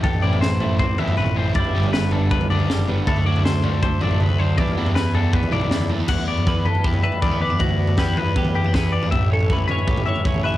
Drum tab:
CC |----------------|----------------|----------------|----------------|
SD |----o-----------|----o-------o---|----o-----------|----o-------o---|
T2 |----------o--o--|---------oo--oo-|----------o--o--|---------oo--oo-|
FT |oo-o--o-o-ooo---|oo-o--o-oooo----|oo-o--o-o-ooo---|oo-o--o-oooo----|
BD |o-------o-------|o-------o-------|o-------o-------|o-------o-------|

CC |x---------------|----------------|----------------|
SD |----------------|----o-------o---|----------------|
T2 |----o-o--o---o--|----o-o--o------|----o-o--o---o--|
FT |oo-o--oooooo---o|oo-o--oooooo---o|oo-o--oooooo---o|
BD |o---o---o---o---|o---o---o---o---|o---o---o---o---|